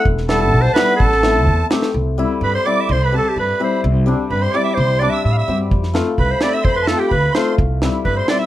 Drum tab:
SD |-oo---o-|-oo---oo|--------|--------|
BD |o---o---|o---o---|--------|--------|

SD |--------|--------|-oo---o-|--o---o-|
BD |--------|--------|o---o---|o---o---|

SD |--o---o-|
BD |o---o---|